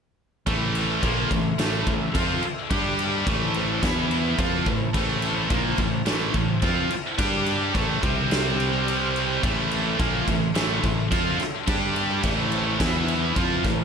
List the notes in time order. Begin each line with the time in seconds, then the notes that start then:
0.47 A1 A2 E3 A3 A4 E5 C6, kick, crash
0.75 crash
1.02 A#1 A#2 F3 A#3, kick, crash
1.31 A1 A2 E3, kick, crash
1.59 A1 A2 E3 A3, snare, crash
1.87 A1 A2 E3, kick, crash
2.15 F2 F3 C4 F4, kick, crash
2.43 muted distorted electric guitar stroke, crash
2.70 G2 G3 D4 G4 D5 D6, kick, crash
2.99 crash
3.26 A1 A2 E3 A3 E4 C5 A5, kick, crash
3.54 crash
3.82 E2 E3 B3 E4 B4 B5, kick, snare, crash
4.11 crash
4.38 F2 F3 C4 F4 C5 A5, kick, crash
4.66 A1 A2 E3, kick, crash
4.94 A1 A2 E3 A3, kick, crash
5.22 crash
5.50 A#1 A#2 F3 A#3, kick, crash
5.78 A1 A2 E3, kick, crash
6.06 A1 A2 E3 A3, snare, crash
6.34 A1 A2 E3, kick, crash
6.62 F2 F3 C4 F4, kick, crash
6.90 muted fingered electric bass stroke, muted distorted electric guitar stroke, crash
7.18 G2 G3 D4 G4 D5 D6, kick, crash
7.46 crash
7.74 A1 A2 E3 A3 A4 E5 C6, kick, crash
8.02 C2 C3 G3 C4 G4 C5, kick, crash
8.31 snare, crash
8.60 crash
8.88 crash
9.16 crash
9.43 A1 A2 E3 A3 A4 E5, kick, crash
9.71 crash
9.99 A#1 A#2 F3 A#3, kick, crash
10.28 A1 A2 E3, kick, crash
10.55 A1 A2 E3 A3, snare, crash
10.83 A1 A2 E3, kick, crash
11.11 F2 F3 C4 F4, kick, crash
11.39 muted distorted electric guitar stroke, muted fingered electric bass stroke, snare, crash
11.67 G2 G3 D4 G4 D5 D6, kick, crash
11.96 crash
12.23 A1 A2 E3 A3 E4 C5 A5, kick, crash
12.52 crash
12.80 E2 E3 B3 E4 B4 B5, kick, snare, crash
13.08 crash
13.36 F2 F3 C4 E4 F4 C5 A5, kick, crash
13.64 A1 A2 E3, kick, snare, crash